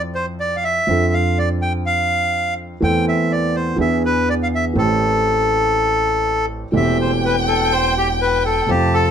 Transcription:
Already playing: F2 F3 C4 E4 A4
0.15 C5
0.40 D5
0.56 F5
0.64 E5
0.87 F2 F3 C4 D4 A4
1.13 F5
1.38 D5
1.62 G5
1.86 F5
2.81 E2 E3 A3 C4 A4 G5
3.09 E5
3.32 D5
3.55 C5
3.76 E2 E3 B3 D4
3.81 G#4 E5
4.05 B4
4.29 D5
4.43 F5
4.55 E5
4.73 A1 A2 E3 A3 C4 G4
4.78 A4
6.72 E1 E2 E3 A3 C4 G4 G5
6.76 E5
7.01 C5
7.25 B4
7.48 A4
7.72 C5
7.98 G4
8.21 B4
8.46 A4
8.66 F2 C3 F3 A3 C4 G4 A5
8.70 F4
8.94 A4

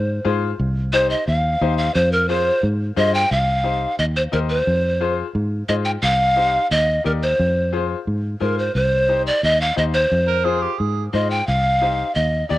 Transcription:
Already playing: G#2 C5
0.24 G#2 F4 G#4 C5
0.59 C2
0.93 D#4 G4 C5
1.10 D#5
1.27 D#2 F5
1.61 D#2 D#4 G4 C5
1.78 F5
1.95 F2 C5
2.12 A#4
2.29 F4 G#4 C5
2.63 G#2
2.96 G2 F4 G#4 C5 D#5
3.14 G5
3.31 C2 F5
3.64 D#4 G4 C5
3.99 D#2 D#5
4.17 C5
4.32 D#2 D#4 G4 A#4 C5
4.50 C5
4.67 F2
5.01 F4 G#4 C5
5.35 G#2
5.69 G#2 F4 G#4 C5 D#5
5.85 G5
6.03 C2 F5
6.36 D#4 G4 C5
6.71 D#2 D#5
7.04 D#2 D#4 G4 A#4 D5
7.23 C5
7.39 F2
7.73 F4 G#4 C5
8.07 G#2
8.41 G#2 F4 G#4 A#4 C5
8.59 C5
8.75 C2 C5
9.09 D#4 G4 C5
9.27 D5
9.43 D#2 D#5
9.61 F5
9.76 D#2 D#4 G4 C5 D#5
9.94 C5
10.12 F2
10.28 A#4
10.44 F4 G#4 C5
10.62 G4
10.78 G#2 G#4
11.13 G#2 F4 G#4 C5 D#5
11.30 G5
11.47 C2 F5
11.81 D#4 G4 C5
12.15 D#2 D#5
12.49 D#2 D#4 G4 D5

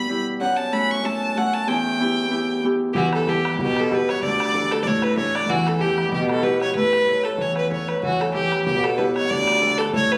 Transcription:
Already playing: E2 B2 A3 C#4 B5
0.09 G3 B3 E4
0.40 F#2 F#5
0.56 A5
0.72 A3 C#4 F#4 B5
0.91 C#6
1.03 A3 C#4 F#4 A5
1.36 A3 C#4 F#4 F#5
1.54 A5
1.67 E2 G5
2.00 B3 E4 G4
2.30 B3 E4 G4
2.64 B3 E4 G4
2.93 E2 E3 F#4 G4, bodhran
3.13 A4, bodhran
3.21 bodhran
3.27 E4 G4 F#5, bodhran
3.45 bodhran
3.59 B2 G4, bodhran
3.76 A4, bodhran
3.91 E4 F#4 G4 B4, bodhran
4.09 C#5, bodhran
4.22 D2 D3 D5, bodhran
4.40 bodhran
4.48 bodhran
4.53 D4 F#4 A4, bodhran
4.71 A4, bodhran
4.83 A2 A3 D5, bodhran
4.87 C#5
5.02 B4, bodhran
5.17 D4 F#4 A4 C#5, bodhran
5.35 D5, bodhran
5.49 E2 E3 F#4, bodhran
5.67 A4, bodhran
5.75 bodhran
5.79 E4 G4 F#5, bodhran
5.98 bodhran
6.11 B2 G4, bodhran
6.29 A4, bodhran
6.43 E4 F#4 G4 B4, bodhran
6.61 C#5, bodhran
6.75 A2 A3 B4, bodhran
6.93 bodhran
7.00 bodhran
7.07 A4 B4 C#5, bodhran
7.24 A4, bodhran
7.38 E2 E3 C#5, bodhran
7.56 B4, bodhran
7.70 A4 B4 C#5, bodhran
7.88 B4, bodhran
8.02 E2 E3 F#4, bodhran
8.20 A4, bodhran
8.28 bodhran
8.34 E4 G4 F#5, bodhran
8.52 bodhran
8.66 B2 G4, bodhran
8.84 A4, bodhran
8.98 E4 F#4 G4 B4, bodhran
9.15 C#5, bodhran
9.30 D2 D3 D5, bodhran
9.47 bodhran
9.56 bodhran
9.60 D4 F#4 A4, bodhran
9.78 A4, bodhran
9.93 A2 A3 C#5, bodhran
10.12 B4, bodhran

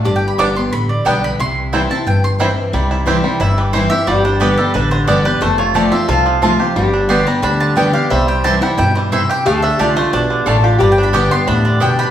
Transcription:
0.05 G1 G2 G4 D5
0.16 G5
0.28 B5
0.38 G1 D3 G3 B3 D4 G4 D5 G5 D6
0.55 B3 G4 C6
0.72 A1 D3 B5
0.89 D5
1.05 B1 D3 G3 B3 D4 G4 D5 G5
1.24 B5
1.39 C2 C3 E4 C6
1.73 E3 G3 C4 E4 C5 G5
1.89 C4 E4 A5
2.06 G1 G2 G5
2.24 C6
2.39 E3 G3 C4 E4 C5 G5
2.73 C2 C3 G3 E4
2.91 E4
3.06 E3 G3 C4 E4 G4 C5 G5
3.23 G3 C4 E4
3.40 G1 G2 E4 E5
3.58 E3 G4
3.73 E3 G3 C4 E4 C5 G5
3.90 C4 E4 G4 E5
4.07 G1 G2 G3 G4 D5
4.25 D4 C5
4.40 D3 G3 B3 G4 B4 D5 G5
4.58 G3 B3 G4 A4
4.74 A1 D3 D4 B4
4.91 D3 C5
5.07 G1 D3 G3 B3 D4 G4 D5 G5
5.25 B3 G4 B4
5.41 F1 F2 A3 A4 C5
5.58 F4 C#5
5.74 F3 A3 C4 F4 G4 C5 D5 A5
5.92 C4 F4 E5
6.08 C2 C3 F4 A4 F5
6.26 F3
6.42 F3 A3 C4 F4 C5 A5
6.59 C4 F4 G4
6.76 G1 G2 G3 G4
6.94 D4
7.09 D3 G3 B3 G4 D5 G5 C6
7.26 G3 B3 G4 A#5
7.42 D2 D3 D4 B5
7.60 D3 A5
7.76 D3 G3 B3 D4 G4 D5 G5
7.93 B3 G4 F5
8.10 C2 C3 G3 C5 E5
8.28 G5
8.44 E3 G3 C4 E4 G4 C5 G5 A5
8.61 G3 C4 E4 F#5
8.78 G2 B2 E4 G5
8.95 E3 C5
9.12 C3 C4 E4 C5 E5 G5
9.30 G4 G5
9.45 D2 D3 A3 A4 F5
9.62 D4 E5
9.79 C2 D3 A3 D4 F4 G4 D5 A5
9.96 A3 D4 F4 C5
10.13 B1 B2 D4 D5
10.18 G4
10.30 D3
10.46 A1 A2 A3 D4 F4 A4 D5 A5
10.64 F4 G4
10.79 G1 G2 G3 G4 D5
10.92 G5
10.98 D4
11.03 B5
11.13 D3 G3 B3 G4 D5 G5 D6
11.31 B3 G4 C6
11.47 D2 A2 D4 B5
11.65 D3 D5
11.80 B2 B3 D4 G4 D5 G5
11.99 G4 B5

